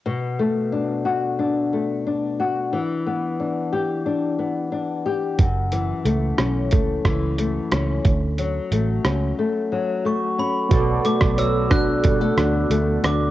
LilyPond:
<<
  \new Staff \with { instrumentName = "Glockenspiel" } { \time 4/4 \key b \minor \tempo 4 = 90 r1 | r1 | r1 | r2. cis'''8 b''8~ |
b''8 d'''8 e'''8 fis'''2 d'''8 | }
  \new Staff \with { instrumentName = "Synth keys" } { \time 4/4 \key b \minor r1 | r1 | r1 | r1 |
<b fis' a' d''>1 | }
  \new Staff \with { instrumentName = "Nylon-string guitar" } { \time 4/4 \key b \minor b,8 a8 d'8 fis'8 d'8 a8 d'8 fis'8 | e8 b8 d'8 g'8 d'8 b8 d'8 g'8 | fis,8 e8 a8 cis'8 a8 e8 a8 cis'8 | r8 fis8 a8 cis'8 a8 fis8 a8 cis'8 |
b,8 a8 fis8 d'8 g16 a16 d'8 a8 d'8 | }
  \new Staff \with { instrumentName = "Picked electric bass" } { \clef bass \time 4/4 \key b \minor r1 | r1 | fis,,4 cis,8 b,,8 cis,8 cis,4 cis,8 | d,4 a,,8 cis,8 r2 |
b,,8 r16 b,,4~ b,,16 b,8 d,8 d,8 d,8 | }
  \new DrumStaff \with { instrumentName = "Drums" } \drummode { \time 4/4 r4 r4 r4 r4 | r4 r4 r4 r4 | <hh bd>8 hh8 hh8 <hh ss>8 <hh bd>8 <hh bd ss>8 hh8 <hh ss>8 | <hh bd>8 hh8 hh8 <hh ss>8 r4 r4 |
<hh bd>8 hh16 <bd ss>16 hh8 <hh bd ss>8 <hh bd>8 <hh ss>8 hh8 <hh ss>8 | }
>>